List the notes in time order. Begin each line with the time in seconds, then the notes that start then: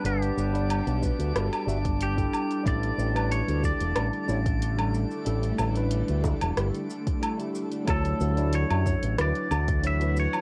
Already playing: G3 B3 D4 D7
0.04 G1 G3 D4 G4 B4 F#5, closed hi-hat, shaker
0.22 closed hi-hat, shaker
0.37 G1, shaker
0.52 G3 D4 D5 F#5, closed hi-hat, shaker
0.70 closed hi-hat, low woodblock, shaker
0.87 B1, closed hi-hat, shaker
1.01 G3 D4 F#4 B4, kick, shaker
1.19 D2, closed hi-hat, shaker
1.34 G1 G3 D4 F#4 A4, cross-stick, closed hi-hat, shaker
1.53 closed hi-hat, low woodblock, shaker
1.66 G1 G3 D4 F#4 E5, shaker
1.85 kick, closed hi-hat, shaker
2.01 G4, closed hi-hat, shaker
2.15 G3 D4 E4 A4, kick, closed hi-hat, shaker
2.33 D3 A3, low woodblock, shaker
2.51 closed hi-hat, shaker
2.63 A1 G3 D4 E4 A4, kick, closed hi-hat, shaker
2.68 D5
2.83 closed hi-hat
2.98 A1, shaker
3.14 G3 D4 E4 B4, closed hi-hat, low woodblock, shaker
3.32 C#5, closed hi-hat, shaker
3.48 D2, closed hi-hat, shaker
3.62 G3 D4 E4 A4 D5, kick, shaker
3.81 E1, closed hi-hat, shaker
3.95 A1 G3 D4 E4 G4, cross-stick, closed hi-hat, low woodblock, shaker
4.13 closed hi-hat, shaker
4.28 A1 G3 D4 E4 C#5, shaker
4.46 kick, closed hi-hat, shaker
4.62 closed hi-hat, shaker
4.77 G3 D4 E4 A4, closed hi-hat, low woodblock
4.94 shaker
5.11 shaker
5.25 A1 G3 D4 E4 A4, closed hi-hat, shaker
5.43 closed hi-hat, shaker
5.59 A1, high bongo, low woodblock, shaker
5.75 G3 D4 E4 B4, closed hi-hat, shaker
5.91 closed hi-hat, shaker
6.08 D2, closed hi-hat, shaker
6.23 G3 D4 E4 A4, kick, high bongo, shaker
6.41 E1, closed hi-hat, low woodblock, shaker
6.55 G1 G3 D4 E4 G4, cross-stick, closed hi-hat, shaker
6.75 closed hi-hat, shaker
6.90 shaker
7.07 kick, closed hi-hat, shaker
7.20 G3 D4 E4 A4, closed hi-hat, low woodblock, shaker
7.38 G3 D4 E4 G4, closed hi-hat, shaker
7.55 shaker
7.71 closed hi-hat, shaker
7.85 D2 E3 F#3 D4 E4 F#4 C#5, kick, closed hi-hat, low woodblock, shaker
7.90 A4
8.05 closed hi-hat, shaker
8.20 D2, shaker
8.36 F#3 D4 E4 D5, closed hi-hat, shaker
8.53 C#5, closed hi-hat, shaker
8.70 F#2, closed hi-hat, low woodblock
8.84 F#3 D4 E4 C#5, kick, shaker
9.03 A1, closed hi-hat, shaker
9.17 D2 F#3 D4 E4 B4, cross-stick, closed hi-hat, shaker
9.21 D5
9.35 closed hi-hat
9.51 D2, low woodblock, shaker
9.68 kick, closed hi-hat, shaker
9.82 F#3 D4 E4 C#5, closed hi-hat, shaker
9.87 E5
9.99 F#3 D4 E4 B4, closed hi-hat, shaker
10.16 C#5, shaker
10.33 low woodblock, shaker